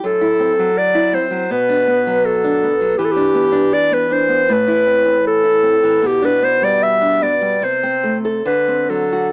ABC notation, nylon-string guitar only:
X:1
M:4/4
L:1/16
Q:1/4=78
K:G
V:1 name="Nylon-string guitar"
F,, E C F,2 E C F, B,, D B, F,2 D B, F, | E, D B, D2 B, D B, A,, E C E,2 E C E, | B,, D B, G,2 D B, G, C, C A, A D, C F, F |]